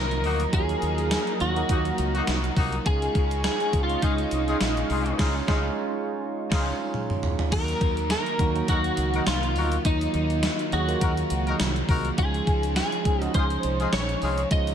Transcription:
Already playing: C2 D#3 F3 F#3 A#3 D#4 F4 F#4 A#4 D#5 A#5 D#6
0.11 closed hi-hat
0.24 D2 A#3 D#4 F#4, open hi-hat
0.40 closed hi-hat
0.52 D#2 D#3 F#3 A#3 D#4 F4 G#4, kick, closed hi-hat
0.69 closed hi-hat
0.81 D#2 A#3 D#4, closed hi-hat
0.98 closed hi-hat
1.11 snare, closed hi-hat, tambourine
1.27 closed hi-hat
1.40 D#2 F#3 A#3 D#4 F#4, closed hi-hat
1.56 F#3 A#3 D#4 F#4, closed hi-hat
1.68 D#2 D#3 A#3 D#4 F#4, kick, closed hi-hat
1.74 D#4
1.85 closed hi-hat
1.98 C#2, closed hi-hat
2.15 A#3 D#4 F#4, closed hi-hat
2.27 C2, snare, closed hi-hat, tambourine
2.44 closed hi-hat
2.57 C2 A#3 D#4 F#4, kick, open hi-hat
2.72 closed hi-hat
2.85 C#2 C#3 G#3 C#4 D#4 F4 G#4 D#5 F5 C#6, kick, closed hi-hat
3.02 closed hi-hat
3.14 C#2 G#3 C#4, kick, closed hi-hat
3.31 closed hi-hat
3.44 G#4, snare, closed hi-hat, tambourine
3.60 closed hi-hat
3.73 C#2 G#3 C#4 D#4 F4, kick, closed hi-hat
3.83 F4
3.89 G#3 C#4 D#4 F4, closed hi-hat
4.00 C#2 C#3 G#3 D#4 F4 G#4, kick, closed hi-hat
4.07 C#4
4.18 closed hi-hat
4.31 C2, closed hi-hat
4.48 D#4 F4 G#4, closed hi-hat
4.61 A#1, snare, closed hi-hat, tambourine
4.77 closed hi-hat
4.90 C2 D#4 F4 G#4, open hi-hat
5.06 closed hi-hat
5.18 C#2 C#3 G#3 C#4 D#4 F4 G#4, kick, snare, crash
5.47 C#2 G#3 C#4 D#4 F4 G#4, kick, snare
6.50 C#2 C#3 G#3 C#4 D#4 F4 G#4, kick, snare, crash
6.56 C#4
6.94 mid tom
7.10 mid tom
7.23 floor tom
7.39 floor tom
7.51 D#2 D#3 F#3 A#3 D#4 F#4 A#4, kick, closed hi-hat, crash
7.68 closed hi-hat
7.80 D#2 A#3 D#4, kick, closed hi-hat
7.97 closed hi-hat
8.10 A#4, snare, closed hi-hat, tambourine
8.26 closed hi-hat
8.39 D#2 D#3 F#3 A#3 D#4 F#4, kick, closed hi-hat
8.55 D#3 F#3 A#3 D#4 F#4, closed hi-hat
8.67 D#2 D#3 A#3 D#4 F#4 A#4, kick, closed hi-hat
8.73 D#4
8.84 closed hi-hat
8.97 C#2, closed hi-hat
9.14 D#4 F#4 A#4, closed hi-hat
9.27 C2 F4, snare, closed hi-hat, tambourine
9.43 closed hi-hat
9.56 D2 D#4 F#4 A#4, open hi-hat
9.72 closed hi-hat
9.84 D#2 D#3 F#3 A#3 D#4 F4, kick, closed hi-hat
10.01 closed hi-hat
10.13 D#2 A#3 D#4, closed hi-hat
10.30 closed hi-hat
10.43 snare, closed hi-hat, tambourine
10.59 closed hi-hat
10.72 D#2 D#3 F#3 A#3 D#4 F#4 G#4, closed hi-hat
10.88 D#3 F#3 A#3 D#4 F4, closed hi-hat
10.96 F#4
11.00 D#2 D#3 A#3 D#4 F#4 A#4, kick, closed hi-hat
11.06 D#4
11.17 closed hi-hat
11.30 C#2, closed hi-hat
11.47 D#4 F#4 A#4, closed hi-hat
11.60 C2, snare, closed hi-hat, tambourine
11.76 closed hi-hat
11.89 C2 D#4 F#4 A#4, kick, open hi-hat
12.05 closed hi-hat
12.17 C#2 C#3 F3 G#3 C#4 D#4 F4 G#4, kick, closed hi-hat
12.34 closed hi-hat
12.46 C#2 G#3 C#4, kick, closed hi-hat
12.63 closed hi-hat
12.76 G#4, snare, closed hi-hat, tambourine
12.92 closed hi-hat
13.05 C#2 F3 G#3 C#4 D#4 G#4, kick, closed hi-hat
13.21 F3 G#3 C#4 D#4 F#4 G#4, closed hi-hat
13.33 C#2 C#3 G#3 D#4 F4 G#4 C5, kick, closed hi-hat
13.39 C#4
13.50 closed hi-hat
13.63 C2, closed hi-hat
13.80 D#4 F4 G#4, closed hi-hat
13.93 A#1 C#5, snare, closed hi-hat, tambourine
14.09 closed hi-hat
14.22 C2 D#4 F4 G#4, open hi-hat
14.38 closed hi-hat
14.51 C#2 C#3 F3 G#3 C#4 D#4 F4 D#5, kick, closed hi-hat
14.67 closed hi-hat

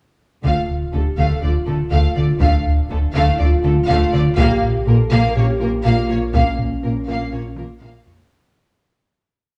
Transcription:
0.43 D1 D2 D3 A3 F4 F5, taiko
0.69 D2
0.93 D2 D3 A3 D4 G4 A4
1.17 D2 D3 A3 F5, taiko
1.30 A4
1.41 D2 D3 F3 A3 F4 D5
1.66 D2 D3 A3 A4
1.91 D2 D3 A3 F5
2.16 D2 D3 A3 D5
2.40 D2 D3 A3 D4 F5, taiko
2.66 D2
2.89 D2 D3 A3 D4 A4
3.14 D2 D3 A3 F5
3.29 E4
3.39 D2 D3 F3 A3 F4 D5
3.63 D2 D3 A3 A4
3.88 D2 D3 A3 F5
4.12 D2 D3 A3 D5
4.37 A#1 A#2 A#3 G4 F5, taiko
4.62 A#2, taiko low-mid
4.87 A#1 A#2 A#3 A4 A#4
5.11 A#1 A#2 A#3 F5
5.24 A#4
5.35 A#1 A#2 A#3 C#4 G4 C#5
5.60 A#1 A#2 A#3 F4 A#4
5.84 A#1 A#2 A#3 F4 F5
6.09 A#1 A#2 A#3 F4 C#5
6.33 A#1 A#2 A#3 C#4 F5, taiko
6.58 A#2, taiko low-mid
6.83 A#1 A#2 A#3 A#4
7.07 A#1 A#2 A#3 F5
7.32 A#1 A#2 A#3 C#4 C#5
7.57 A#1 A#2 A#3 F4 A#4, taiko mid
7.80 A#1 A#2 A#3 F5, taiko high
8.05 A#1 A#2 A#3 F4 C#5, taiko low

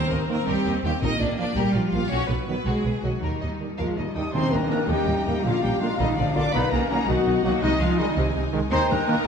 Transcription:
Already playing: D#3 C4
0.11 D#2 A#3 A#4 D#5
0.29 D#3 A#3 A#4
0.47 D#2 G3 G4 A#4
0.66 D#2 D#5
0.84 D#2 D#3 G3 A#3 G4 G5
1.01 A#1 A#2 A#3 D#4 A#4 D#5
1.20 A#1 D4 D5
1.37 F3 A#3 D4 D5
1.56 A#1 G3 G4 A#4
1.74 A#1 F3 F4 D5
1.92 A#1 F3 A#3 F4 F5
2.11 B1 F#3 C#4 F#4 C#5
2.29 B1 B3 B4
2.47 D#3 F#3 B3 B4
2.66 B1 G#3 F#4 G#4
2.84 B1 B4
3.03 B1 D#3 F#3 F#4 D#5
3.21 D#2 D#3 G3 D#4 A#4
3.41 D#2 D#5
3.60 D#3 G3
3.78 D#2 F3 G#3 F4 A#4 F5
3.97 D#2 D#3 G3 D#4 D#5
4.15 D#2 D#3 G3 D#4 G4 D#5 G5 D#6
4.33 D#2 D#3 C4 D#4 C5 D#5 G5 A#5 C6, tam-tam
4.52 D#2 G3 A#3 D4 A#4 A#5
4.70 D#3 A#3 D4 A#4 A#5
4.88 D#2 D#3 G3 A#3 G4 D#5 G5
5.07 D#2 G3
5.26 D#2 D#3 G3 A#3 G4 G5
5.43 A#1 D3 F3 A#3 D4 F4 F5
5.63 A#1 F3 G3 A#3 G4 G5
5.80 D3 F3 G#3 A#3 F4 F5
5.99 A#1 D3 D#3 G3 D#4 D#5
6.16 A#1 D3 F3 D4 D5
6.35 A#1 D3 A#3 D4 F4 D5 D6
6.53 B1 D#3 B3 D#4 B4 D#5 F#5 B5
6.71 B1 D#3 A#3 C#4 A#4 A#5
6.90 D#3 F#3 A#3 C#4 A#4 A#5
7.07 B1 D#3 F#3 B3 F#4 D#5 F#5
7.26 B1 D#3
7.44 B1 D#3 F#3 A#3 F#4 F#5
7.61 C2 C3 D#3 G#3 D#4 D#5 G#5
7.79 C2 C3 F3 G#3 F4 F5
7.98 D#3 G3 G#3 D#4 D#5
8.17 C2 C3
8.35 C2 C3
8.52 C2 D#3 G#3
8.71 D#2 D#3 C4 D#4 C5 D#5 G5 A#5 C6
8.90 D#2 G3 A#3 D4 A#4 A#5
9.07 D#3 A#3 D4 A#4 A#5

